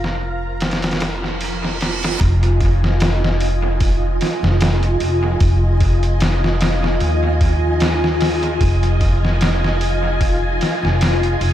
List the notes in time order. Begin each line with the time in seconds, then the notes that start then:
Already playing: F1 F4 F5 A#5
0.04 snare
0.60 snare, open hi-hat, reverse cymbal
0.71 snare, open hi-hat
0.82 snare, open hi-hat
0.91 snare, open hi-hat
1.00 snare, open hi-hat
1.24 snare
1.41 open hi-hat
1.65 snare
1.81 snare, open hi-hat
2.03 snare, open hi-hat
2.20 F1 F4 D#5 G#5, kick, open hi-hat
2.43 closed hi-hat
2.60 kick, open hi-hat
2.84 snare
3.00 snare, open hi-hat
3.24 snare
3.41 open hi-hat
3.80 kick, open hi-hat
4.21 snare, open hi-hat
4.43 F1, snare
4.61 snare, open hi-hat
4.83 closed hi-hat
5.00 F1, open hi-hat
5.40 F1, kick, open hi-hat
5.80 kick, open hi-hat
6.03 closed hi-hat
6.20 snare, open hi-hat
6.44 snare
6.61 snare, open hi-hat
6.84 snare
7.00 D#2, open hi-hat
7.41 kick, open hi-hat
7.80 snare, open hi-hat
8.04 snare
8.21 snare, open hi-hat
8.43 closed hi-hat
8.61 F1, kick, open hi-hat
8.83 closed hi-hat
9.01 kick, open hi-hat
9.25 snare
9.41 snare, open hi-hat
9.64 snare
9.81 open hi-hat
10.21 kick, open hi-hat
10.61 snare, open hi-hat
10.83 F1, snare
11.01 snare, open hi-hat
11.23 closed hi-hat
11.41 F1, open hi-hat